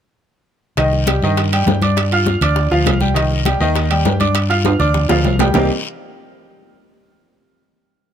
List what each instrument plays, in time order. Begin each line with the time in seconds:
0.77 fingered electric bass C2, grand piano D#3 D#4 D#5, high bongo, high conga, high timbale, long guiro
0.93 high bongo, high conga
1.07 grand piano G3 G4 G5, high bongo, high conga, high timbale, low timbale, short guiro
1.22 fingered electric bass G2, grand piano D#3 D#4 D#5, high conga, short guiro
1.37 high bongo, high conga, high timbale, long guiro
1.52 grand piano G3 G4 G5, high bongo, high conga, high timbale
1.66 fingered electric bass G2, high bongo, low bongo, high conga, low timbale, short guiro
1.82 grand piano D4 D5 D6, high bongo, high conga, high timbale, short guiro
1.97 high bongo, high conga, high timbale, long guiro
2.11 grand piano F4 F5 F6, high bongo, high conga, high timbale
2.26 high bongo, high conga, low timbale, short guiro
2.41 fingered electric bass D2, grand piano D4 D5 D6, high conga, low conga, high timbale, short guiro
2.56 high bongo, high conga, long guiro
2.71 fingered electric bass D2, grand piano F3 F4 F5, high bongo, high conga
2.86 fingered electric bass C2, high bongo, low bongo, high conga, high timbale, low timbale, short guiro
3.00 grand piano G3 G4 G5, high bongo, high conga, short guiro
3.14 grand piano D#3 D#4 D#5, high bongo, high conga, high timbale, long guiro
3.31 high bongo, high conga
3.45 grand piano G3 G4 G5, high bongo, high conga, high timbale, low timbale, short guiro
3.60 fingered electric bass D#2, grand piano D#3 D#4 D#5, high conga, short guiro
3.75 high bongo, high conga, high timbale, long guiro
3.90 grand piano G3 G4 G5, high bongo, high conga, high timbale
4.05 fingered electric bass G2, high bongo, low bongo, high conga, low timbale, short guiro
4.20 grand piano D4 D5 D6, high bongo, high conga, high timbale, short guiro
4.35 high bongo, high conga, high timbale, long guiro
4.49 grand piano F4 F5 F6, high bongo, high conga, high timbale
4.64 high bongo, high conga, high timbale, short guiro
4.79 fingered electric bass D2, grand piano D4 D5 D6, high conga, low conga, short guiro
4.94 high bongo, high conga, low conga, long guiro
5.09 fingered electric bass D2, grand piano F3 F4 F5, high bongo, high conga, low timbale
5.24 fingered electric bass C2, high conga, low timbale, short guiro
5.39 grand piano G3 G4 G5, low bongo, high conga, low timbale, short guiro
5.54 fingered electric bass C2, grand piano C3 G3 A#3 C4 D#4 G4, low bongo, low conga, low timbale, long guiro